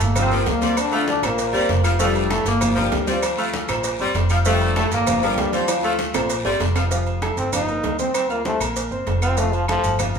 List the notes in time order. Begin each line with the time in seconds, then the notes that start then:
Already playing: A3 A4 A5
0.00 G1 A#2 A#3, cowbell, high conga, short guiro, maracas
0.15 C3 F3 C4 F4 F5, cowbell, high conga, low conga, low agogo, long guiro, claves, maracas
0.31 F3 A#3 A#4 A#5, high conga, low conga, maracas
0.46 D2 A#2 A#3, cowbell, high conga, low timbale, low agogo, short guiro, maracas
0.61 G3 C4 C5 C6, cowbell, high conga, short guiro, maracas
0.77 D3 D4, cowbell, high conga, low agogo, long guiro, claves, maracas
0.92 A3 F4 F5 F6, high conga, low agogo, maracas
1.08 D3 D4, cowbell, high conga, low timbale, short guiro, maracas
1.23 A#1 A#2 A#3 C5 A#5, cowbell, low agogo, short guiro, claves, maracas
1.38 cowbell, high conga, low agogo, long guiro, maracas
1.53 G1 G3 C4 C5 C6, high conga, maracas
1.69 F1, cowbell, high conga, low timbale, low agogo, short guiro, maracas
1.84 F3 F4 F5 F6, high conga, low agogo, short guiro, claves, maracas
1.99 G2 F3 G3 A3 F4 F5, cowbell, long guiro, maracas
2.15 high conga, low agogo, maracas
2.30 A2 A3 A4 A5, cowbell, high conga, low timbale, low agogo, short guiro, claves, maracas
2.45 G1 A#2 A#3, cowbell, short guiro, maracas
2.61 F3 F4 F5, cowbell, high conga, low conga, low agogo, long guiro, claves, maracas
2.76 G2 F3 G3 A#3 A#4 A#5, high conga, low conga, maracas
2.91 D2, cowbell, high conga, low timbale, low agogo, short guiro, maracas
3.07 F3 G3 C4 F4 C5 C6, cowbell, high conga, short guiro, maracas
3.22 cowbell, high conga, low agogo, long guiro, claves, maracas
3.38 A3 F4 F5 F6, high conga, low agogo, maracas
3.53 cowbell, high conga, low timbale, short guiro, maracas
3.68 A#1 A#2 C5 A#5, cowbell, low agogo, short guiro, claves, maracas
3.84 cowbell, high conga, low agogo, long guiro, maracas
3.99 G1 G3 C4 C5 C6, high conga, maracas
4.14 F1, cowbell, high conga, low timbale, low agogo, short guiro, maracas
4.29 F3 F4 F5 F6, high conga, low agogo, short guiro, claves, maracas
4.45 G2 F3 G3 A3 F4 F5, cowbell, long guiro, maracas
4.61 low agogo, maracas
4.76 A2 A3 A4 A5, cowbell, high conga, low timbale, low agogo, short guiro, claves, maracas
4.91 G1 A#2 A#3, cowbell, high conga, short guiro, maracas
5.07 F3 F4 F5, cowbell, high conga, low conga, low agogo, long guiro, claves, maracas
5.22 G2 F3 G3 A#3 A#4 A#5, high conga, maracas
5.37 D2, cowbell, high conga, low timbale, low agogo, short guiro, maracas
5.53 F3 G3 C4 F4 C5 C6, cowbell, high conga, short guiro, maracas
5.68 cowbell, high conga, high timbale, low agogo, long guiro, claves, maracas
5.83 A3 F4 F5 F6, high conga, high timbale, low agogo, maracas
5.99 cowbell, high conga, short guiro, maracas
6.14 A#1 A#2 C5 A#5, cowbell, low timbale, low agogo, short guiro, claves, maracas
6.29 cowbell, high conga, low agogo, long guiro, maracas
6.44 G1 G3 C4 C5 C6, high conga, low timbale, maracas
6.60 F1, cowbell, high conga, low timbale, low agogo, short guiro, maracas
6.75 F3 F4 F5 F6, high conga, low timbale, low agogo, short guiro, claves, maracas
6.91 F3 F4 F5, cowbell, maracas
7.06 high conga, low agogo, maracas
7.22 A3 A4 A5, cowbell, high conga, low timbale, low agogo, claves, maracas
7.37 G1 C4, cowbell, high conga, maracas
7.53 F3 D#4 F4 F5, cowbell, high conga, low conga, low agogo, claves, maracas
7.68 A#3 A#4 A#5, high conga, maracas
7.83 D2, cowbell, high conga, low timbale, low agogo, maracas
7.99 C4 C5 C6, cowbell, high conga, maracas
8.14 C4, cowbell, high conga, low agogo, claves, maracas
8.30 A#3 F4 F5 F6, high conga, low agogo, maracas
8.45 A3 C4 C5 C6, cowbell, high conga, low timbale, maracas
8.60 A#1 A#3 A#4 A#5, cowbell, low agogo, claves, maracas
8.76 cowbell, high conga, low agogo, maracas
8.91 G1 C4 C5 C6, high conga, maracas
9.07 F1, cowbell, high conga, low timbale, low agogo, maracas
9.22 C4 F4 F5 F6, high conga, low agogo, claves, maracas
9.37 F3 A3 F4 F5, cowbell, high conga, maracas
9.53 F3, high conga, low agogo, maracas
9.68 F3 A3 A4 A5, cowbell, high conga, low timbale, low agogo, claves, maracas
9.84 G1, cowbell, high conga, maracas
9.99 F3 F4 F5, cowbell, high conga, low conga, low agogo, claves, maracas
10.15 A#3 A#4 A#5, high conga, low conga, maracas